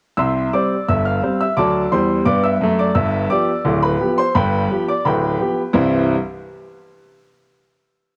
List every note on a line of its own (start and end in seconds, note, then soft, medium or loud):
0.17 0.47 C2 medium
0.17 0.47 C3 medium
0.17 0.51 E5 medium
0.17 0.51 C6 medium
0.17 0.45 E6 medium
0.54 0.72 G3 soft
0.54 0.73 C4 soft
0.54 0.73 C5 soft
0.54 0.86 D5 medium
0.54 0.86 D6 medium
0.89 1.18 G1 medium
0.89 1.18 G2 medium
0.89 1.05 E5 medium
0.89 1.05 E6 medium
1.05 1.38 F5 medium
1.05 1.38 F6 medium
1.23 1.42 G3 soft
1.23 1.42 C4 soft
1.23 1.42 C5 medium
1.40 1.57 E5 medium
1.40 1.57 E6 medium
1.57 1.85 D2 medium
1.57 1.86 F#3 medium
1.57 1.90 D5 medium
1.57 1.90 A5 medium
1.57 1.90 D6 medium
1.92 2.19 E2 medium
1.92 2.20 G3 medium
1.92 2.24 C5 medium
1.92 2.19 C6 medium
2.25 2.54 G2 medium
2.25 2.55 B3 medium
2.25 2.43 D5 medium
2.25 2.43 D6 medium
2.43 2.76 E5 medium
2.43 2.76 E6 medium
2.61 2.89 F#2 medium
2.61 2.90 A3 medium
2.79 2.95 D5 medium
2.79 2.96 D6 medium
2.95 3.25 G1 medium
2.95 3.25 G2 medium
2.95 3.28 E5 medium
2.95 3.23 E6 loud
3.30 3.49 F3 medium
3.30 3.49 B3 soft
3.30 3.50 G4 medium
3.30 3.79 D5 medium
3.30 3.80 D6 medium
3.65 3.95 D1 medium
3.65 3.94 D2 medium
3.82 4.15 B4 medium
3.82 4.10 B5 medium
4.00 4.19 F3 medium
4.00 4.20 B3 medium
4.00 4.20 G4 medium
4.18 4.35 C5 medium
4.18 4.35 C6 medium
4.35 4.65 G1 medium
4.35 4.65 G2 loud
4.35 4.85 B4 medium
4.35 4.85 G5 medium
4.35 4.85 B5 medium
4.70 4.89 F3 medium
4.70 4.90 B3 medium
4.70 4.90 G4 medium
4.88 5.05 D5 medium
4.88 5.06 D6 medium
5.05 5.35 D1 medium
5.05 5.35 D2 medium
5.05 5.72 B4 medium
5.05 5.72 G5 medium
5.05 5.61 B5 medium
5.40 5.59 F3 soft
5.40 5.60 B3 soft
5.40 5.60 G4 medium
5.73 6.13 C2 loud
5.73 6.14 G2 medium
5.73 6.14 E3 medium
5.73 6.14 G3 medium
5.73 6.14 C4 medium
5.73 6.14 E4 medium
5.73 6.14 C6 medium